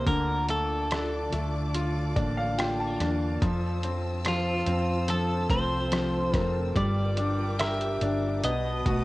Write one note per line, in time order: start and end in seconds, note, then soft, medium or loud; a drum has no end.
0.00 0.94 A#3 soft
0.00 0.15 C4 soft
0.00 0.15 G4 medium
0.06 1.29 D2 medium
0.06 3.38 D3 medium
0.06 3.42 D3 medium
0.06 3.39 F4 medium
0.06 0.46 A#4 medium
0.06 3.39 D5 medium
0.06 6.72 A5 medium
0.06 3.39 D6 medium
0.06 kick medium
0.06 closed hi-hat medium
0.49 1.31 A3 soft
0.49 1.32 D4 soft
0.49 2.97 A4 medium
0.49 closed hi-hat medium
0.91 2.14 D4 soft
0.91 1.74 A4 medium
0.91 cross-stick medium
0.91 closed hi-hat medium
1.32 2.13 D2 medium
1.32 2.96 A3 soft
1.32 2.58 D4 medium
1.32 closed hi-hat medium
1.74 2.57 F4 soft
1.74 4.25 A4 medium
1.74 closed hi-hat medium
2.16 2.96 A1 medium
2.16 2.99 A#3 soft
2.16 2.99 D4 medium
2.16 2.36 D5 medium
2.16 kick medium
2.16 closed hi-hat medium
2.37 2.57 F5 medium
2.58 3.51 D4 medium
2.58 3.40 F4 soft
2.58 2.78 G5 medium
2.58 cross-stick medium
2.58 closed hi-hat medium
2.80 3.38 A5 medium
3.00 3.39 E2 medium
3.00 3.51 A#3 soft
3.00 3.41 D4 soft
3.00 cross-stick soft
3.00 closed hi-hat medium
3.41 4.63 F2 medium
3.41 6.75 F2 medium
3.41 4.24 F3 medium
3.41 8.39 F4 medium
3.41 6.72 C5 medium
3.41 6.72 E6 medium
3.41 kick medium
3.41 closed hi-hat medium
3.83 4.65 C4 medium
3.83 4.66 C4 soft
3.83 closed hi-hat medium
4.25 5.07 F3 medium
4.25 5.12 F4 medium
4.25 5.07 A4 soft
4.25 cross-stick medium
4.25 closed hi-hat medium
4.66 5.46 F2 medium
4.66 5.90 C4 medium
4.66 5.49 C4 soft
4.66 closed hi-hat medium
5.08 5.90 F3 soft
5.08 6.84 A4 medium
5.08 5.50 A4 medium
5.08 closed hi-hat medium
5.49 6.35 C2 medium
5.49 6.33 A3 soft
5.49 6.33 C4 medium
5.49 6.39 C5 medium
5.49 kick medium
5.49 closed hi-hat medium
5.91 6.73 F3 soft
5.91 6.84 C4 medium
5.91 cross-stick medium
5.91 closed hi-hat medium
6.33 6.73 F1 medium
6.33 6.84 A3 medium
6.33 6.75 C4 soft
6.33 kick medium
6.33 cross-stick soft
6.33 closed hi-hat medium
6.39 6.76 A#4 medium
6.76 7.98 G1 medium
6.76 8.44 G2 medium
6.76 8.40 G3 medium
6.76 8.42 A#4 medium
6.76 7.59 D5 medium
6.76 8.42 G5 medium
6.76 8.42 D6 medium
6.76 kick medium
6.76 closed hi-hat medium
7.17 8.00 D4 medium
7.17 8.01 D4 medium
7.17 closed hi-hat medium
7.59 8.52 G4 medium
7.59 8.41 A#4 medium
7.59 8.44 E5 medium
7.59 cross-stick loud
7.59 closed hi-hat medium
7.81 closed hi-hat soft
8.01 8.41 G1 loud
8.01 8.52 D4 medium
8.01 8.43 D4 soft
8.01 closed hi-hat soft
8.43 8.83 B1 medium
8.43 9.04 B2 medium
8.43 9.04 B3 medium
8.43 9.04 F#4 medium
8.43 9.04 B4 medium
8.43 9.04 D#5 medium
8.43 9.04 A5 medium
8.43 9.04 D#6 medium
8.43 closed hi-hat loud
8.86 9.04 B1 medium
8.86 9.04 A3 soft
8.86 9.04 F#4 medium
8.86 kick medium
8.86 closed hi-hat medium